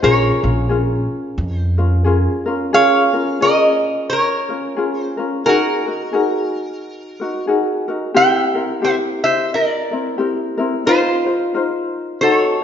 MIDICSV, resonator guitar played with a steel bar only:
0, 0, Header, 1, 2, 480
1, 0, Start_track
1, 0, Key_signature, -5, "minor"
1, 0, Tempo, 677201
1, 16, Time_signature, 4, 2, 24, 8
1, 8959, End_track
2, 0, Start_track
2, 0, Title_t, "Resonator guitar played with a steel bar"
2, 0, Program_c, 0, 25
2, 27, Note_on_c, 0, 73, 91
2, 31, Note_on_c, 0, 70, 70
2, 1097, Note_off_c, 0, 73, 0
2, 1097, Note_on_c, 0, 72, 91
2, 1721, Note_off_c, 0, 72, 0
2, 1723, Note_off_c, 0, 70, 0
2, 1944, Note_on_c, 0, 77, 108
2, 1948, Note_on_c, 0, 73, 88
2, 2395, Note_off_c, 0, 73, 0
2, 2424, Note_off_c, 0, 77, 0
2, 2427, Note_on_c, 0, 75, 90
2, 2442, Note_on_c, 0, 70, 69
2, 2882, Note_off_c, 0, 70, 0
2, 2900, Note_off_c, 0, 75, 0
2, 2903, Note_on_c, 0, 73, 84
2, 2925, Note_on_c, 0, 70, 70
2, 3548, Note_off_c, 0, 73, 0
2, 3548, Note_on_c, 0, 72, 84
2, 3845, Note_off_c, 0, 70, 0
2, 3869, Note_on_c, 0, 70, 81
2, 3891, Note_off_c, 0, 72, 0
2, 3892, Note_on_c, 0, 66, 71
2, 5277, Note_off_c, 0, 70, 0
2, 5288, Note_off_c, 0, 66, 0
2, 5787, Note_on_c, 0, 79, 104
2, 5791, Note_on_c, 0, 76, 81
2, 6238, Note_off_c, 0, 76, 0
2, 6269, Note_on_c, 0, 76, 72
2, 6270, Note_on_c, 0, 72, 66
2, 6278, Note_off_c, 0, 79, 0
2, 6344, Note_off_c, 0, 76, 0
2, 6346, Note_off_c, 0, 72, 0
2, 6547, Note_on_c, 0, 76, 93
2, 6557, Note_on_c, 0, 72, 67
2, 6733, Note_off_c, 0, 72, 0
2, 6747, Note_off_c, 0, 76, 0
2, 6763, Note_on_c, 0, 74, 71
2, 6771, Note_on_c, 0, 70, 60
2, 7687, Note_off_c, 0, 70, 0
2, 7701, Note_off_c, 0, 74, 0
2, 7704, Note_on_c, 0, 72, 99
2, 7718, Note_on_c, 0, 65, 77
2, 8640, Note_off_c, 0, 65, 0
2, 8652, Note_off_c, 0, 72, 0
2, 8655, Note_on_c, 0, 72, 87
2, 8669, Note_on_c, 0, 69, 66
2, 8733, Note_off_c, 0, 72, 0
2, 8733, Note_on_c, 0, 73, 87
2, 8930, Note_off_c, 0, 69, 0
2, 8951, Note_off_c, 0, 73, 0
2, 8959, End_track
0, 0, End_of_file